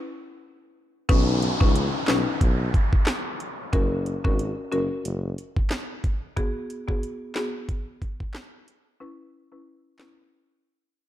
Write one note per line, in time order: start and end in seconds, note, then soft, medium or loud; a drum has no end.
1.09 1.53 B1 loud
1.09 1.56 C#4 medium
1.09 1.56 D#4 medium
1.09 1.56 B4 loud
1.09 kick loud
1.09 closed hi-hat medium
1.09 downlifter medium
1.42 closed hi-hat medium
1.61 1.89 C#2 medium
1.61 1.81 C#4 medium
1.61 1.81 D#4 medium
1.61 1.81 B4 medium
1.61 kick loud
1.76 closed hi-hat medium
2.07 2.24 B1 medium
2.07 2.31 C#4 medium
2.07 2.31 D#4 medium
2.07 2.31 B4 medium
2.07 snare loud
2.07 clap medium
2.07 closed hi-hat soft
2.41 2.69 B1 medium
2.41 kick medium
2.41 closed hi-hat medium
2.74 kick medium
2.74 closed hi-hat soft
2.93 kick medium
3.06 cross-stick medium
3.06 snare loud
3.06 clap medium
3.06 closed hi-hat medium
3.40 closed hi-hat medium
3.73 4.17 F#1 loud
3.73 4.20 C#4 loud
3.73 4.20 F#4 medium
3.73 4.20 A#4 loud
3.73 kick loud
3.73 closed hi-hat medium
4.06 closed hi-hat medium
4.24 4.53 G#1 medium
4.24 4.45 C#4 medium
4.24 4.45 F#4 medium
4.24 4.45 A#4 medium
4.24 kick loud
4.39 closed hi-hat medium
4.72 4.88 F#1 medium
4.72 4.95 C#4 medium
4.72 4.95 F#4 medium
4.72 4.95 A#4 medium
4.72 closed hi-hat soft
5.05 5.33 F#1 loud
5.05 closed hi-hat medium
5.38 closed hi-hat medium
5.57 kick loud
5.70 cross-stick medium
5.70 snare loud
5.70 clap medium
5.70 closed hi-hat medium
6.04 kick medium
6.04 closed hi-hat medium
6.37 6.84 B3 medium
6.37 6.84 F#4 medium
6.37 6.84 G#4 loud
6.37 kick loud
6.37 closed hi-hat medium
6.70 closed hi-hat soft
6.88 7.08 B3 medium
6.88 7.09 F#4 medium
6.88 7.09 G#4 medium
6.88 kick medium
7.03 closed hi-hat medium
7.35 7.59 B3 medium
7.35 7.59 F#4 medium
7.35 7.59 G#4 medium
7.35 snare loud
7.35 clap medium
7.35 closed hi-hat soft
7.69 kick medium
7.69 closed hi-hat medium
8.02 kick medium
8.02 closed hi-hat soft
8.20 kick medium
8.34 cross-stick medium
8.34 snare loud
8.34 clap medium
8.34 closed hi-hat medium
8.68 closed hi-hat soft
9.00 9.47 C#4 medium
9.00 9.48 E4 medium
9.00 9.48 B4 loud
9.52 9.72 C#4 medium
9.52 9.72 E4 medium
9.52 9.72 B4 medium
9.99 10.22 C#4 medium
9.99 10.22 E4 medium
9.99 10.23 B4 medium
9.99 snare loud
9.99 clap medium